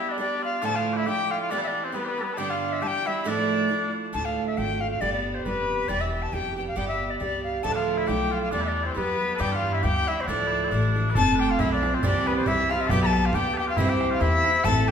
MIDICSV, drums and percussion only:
0, 0, Header, 1, 2, 480
1, 0, Start_track
1, 0, Tempo, 438276
1, 685, Time_signature, 2, 2, 24, 8
1, 16331, End_track
2, 0, Start_track
2, 0, Title_t, "Bodhran"
2, 12214, Note_on_c, 9, 64, 97
2, 12323, Note_off_c, 9, 64, 0
2, 12478, Note_on_c, 9, 64, 57
2, 12588, Note_off_c, 9, 64, 0
2, 12693, Note_on_c, 9, 64, 91
2, 12803, Note_off_c, 9, 64, 0
2, 12955, Note_on_c, 9, 64, 64
2, 13065, Note_off_c, 9, 64, 0
2, 13171, Note_on_c, 9, 64, 87
2, 13280, Note_off_c, 9, 64, 0
2, 13430, Note_on_c, 9, 64, 61
2, 13539, Note_off_c, 9, 64, 0
2, 13645, Note_on_c, 9, 64, 78
2, 13755, Note_off_c, 9, 64, 0
2, 13903, Note_on_c, 9, 64, 61
2, 14013, Note_off_c, 9, 64, 0
2, 14117, Note_on_c, 9, 64, 95
2, 14227, Note_off_c, 9, 64, 0
2, 14380, Note_on_c, 9, 64, 70
2, 14489, Note_off_c, 9, 64, 0
2, 14597, Note_on_c, 9, 64, 89
2, 14706, Note_off_c, 9, 64, 0
2, 14865, Note_on_c, 9, 64, 65
2, 14974, Note_off_c, 9, 64, 0
2, 15082, Note_on_c, 9, 64, 101
2, 15191, Note_off_c, 9, 64, 0
2, 15342, Note_on_c, 9, 64, 72
2, 15452, Note_off_c, 9, 64, 0
2, 15560, Note_on_c, 9, 64, 90
2, 15670, Note_off_c, 9, 64, 0
2, 15820, Note_on_c, 9, 64, 59
2, 15929, Note_off_c, 9, 64, 0
2, 16035, Note_on_c, 9, 64, 76
2, 16145, Note_off_c, 9, 64, 0
2, 16331, End_track
0, 0, End_of_file